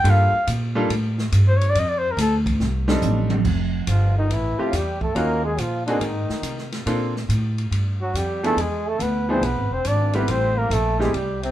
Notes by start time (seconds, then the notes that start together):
Already playing: G5
0.04 G2 G3 A#3 D4 F4 A4, ride
0.10 F5
0.33 muted upright bass stroke
0.47 A#2, hi-hat pedal, ride
0.75 G3 A#3 D4 F4 A4
0.90 A2, ride
1.18 snare
1.32 G2, hi-hat pedal, ride
1.48 C5
1.56 C#5
1.61 ride
1.70 D5
1.75 F2, ride
1.79 D#5
1.89 D5
1.98 C5
2.11 A#4
2.17 D2, snare, hi-hat pedal, ride
2.21 A4
2.46 kick, ride
2.60 C2, snare
2.88 G3 C4 D4 D#4 A4, snare
3.02 A1, hi-hat pedal, high tom
3.30 high tom
3.44 F1, kick, crash
3.87 G1 F3 F4, hi-hat pedal, ride
4.17 D#3 D#4
4.30 A1 E3 E4, ride
4.58 F3 A3 C4 E4 F4 G4, muted upright bass stroke
4.72 E2 G3 G4, snare, hi-hat pedal, ride
5.01 A3 A4, kick
5.15 D#2 A#3 C#4 D#4 F4 F#4 A#4, ride
5.44 G#3 G#4
5.57 A#2 F3 F4, hi-hat pedal, ride
5.86 D3 A#3 C4 D4 D#4 F#4 G#4, ride
6.00 G#2 D#3 D#4, ride
6.29 muted upright bass stroke, snare
6.42 C3, hi-hat pedal, ride
6.58 snare
6.72 snare, ride
6.86 A#2 A#3 C4 D4 F4 A4, ride
7.16 snare
7.28 A2, hi-hat pedal, ride
7.58 ride
7.71 G2, ride
8.01 F#3 F#4
8.14 F2 G3 G4, hi-hat pedal, ride
8.43 F3 A3 B3 D4 E4 G#4 A4, ride
8.56 E2 G#3, ride
8.61 G#4
8.87 A3 A4
8.99 D2 B3 B4, hi-hat pedal, ride
9.29 F3 B3 C4 D4 E4 G#4 C5
9.41 B1 B3 B4, ride
9.56 G#1
9.71 E1 C4 C5
9.85 G#1 D4 D5, hi-hat pedal, ride
10.13 G3 A3 B3 C4 E4 G4 B4, ride
10.28 A1 C4 C5, ride
10.57 A#3 A#4
10.70 A#1 A3 A4, hi-hat pedal, ride
10.99 G3 G#3 A3 C4 E4 G4 G#4, snare
11.13 C2 G3 G4, ride
11.43 C3 C4, ride